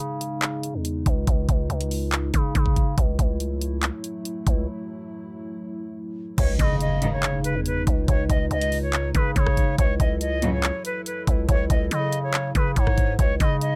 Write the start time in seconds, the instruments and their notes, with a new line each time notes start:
Already playing: 808-style bass C#3, analog synth pad C#3 G#3 D#4
0.21 closed hi-hat
0.42 clap, closed hi-hat
0.63 closed hi-hat
0.74 808-style bass E2
0.85 closed hi-hat
1.06 808-style bass C#2, kick, closed hi-hat
1.27 808-style bass C#2, kick, closed hi-hat
1.49 808-style bass C#2, kick, closed hi-hat
1.70 808-style bass C#2, closed hi-hat
1.81 closed hi-hat
1.91 open hi-hat
2.12 clap, closed hi-hat
2.34 808-style bass C#3, kick, closed hi-hat
2.55 808-style bass C#3, kick, closed hi-hat
2.66 kick
2.76 kick, closed hi-hat
2.98 808-style bass C#2, analog synth pad F#3 A3 E4, kick, closed hi-hat
3.19 808-style bass C#2, kick, closed hi-hat
3.40 closed hi-hat
3.61 closed hi-hat
3.83 clap, closed hi-hat
4.04 closed hi-hat
4.25 closed hi-hat
4.47 808-style bass C#2, kick, closed hi-hat
6.38 808-style bass C#2, analog synth pad C#3 G#3 D#4, flute C#5, kick, closed hi-hat, crash, impact
6.59 808-style bass C#3, flute D#5, kick, closed hi-hat
6.81 flute D#5, closed hi-hat
7.02 string section G#2 D#3, closed hi-hat
7.12 flute C#5
7.23 clap, closed hi-hat
7.44 flute B4, closed hi-hat
7.55 808-style bass E2
7.66 flute B4, closed hi-hat
7.87 808-style bass C#2, kick, closed hi-hat
8.08 808-style bass C#2, flute C#5, kick, closed hi-hat
8.29 808-style bass C#2, flute D#5, kick, closed hi-hat
8.51 808-style bass C#2, flute D#5, closed hi-hat
8.61 closed hi-hat
8.72 open hi-hat
8.82 flute C#5
8.93 clap, closed hi-hat
9.14 808-style bass C#3, flute B4, kick, closed hi-hat
9.36 808-style bass C#3, flute C#5, kick, closed hi-hat
9.47 kick, cross-stick
9.57 kick, closed hi-hat
9.78 808-style bass C#2, analog synth pad F#3 E4 A4, flute C#5, kick, closed hi-hat
10.00 808-style bass C#2, flute D#5, kick, closed hi-hat
10.20 flute D#5, closed hi-hat
10.42 string section A1 F#2 C#3, closed hi-hat
10.53 flute C#5
10.63 clap, closed hi-hat
10.85 flute B4, closed hi-hat
11.06 flute B4, closed hi-hat
11.27 808-style bass C#2, kick, closed hi-hat
11.49 808-style bass C#2, flute C#5, kick, closed hi-hat
11.70 808-style bass C#2, flute D#5, kick, closed hi-hat
11.91 808-style bass C#3, flute D#5, closed hi-hat
12.13 closed hi-hat
12.23 flute C#5
12.34 clap, closed hi-hat
12.55 808-style bass C#3, flute B4, kick, closed hi-hat
12.76 808-style bass G#2, flute C#5, kick, closed hi-hat
12.87 kick, cross-stick
12.98 kick, closed hi-hat
13.19 808-style bass C#2, analog synth pad C#3 G#3 D#4, flute C#5, kick, closed hi-hat
13.40 808-style bass C#3, flute D#5, kick, closed hi-hat
13.61 flute D#5, closed hi-hat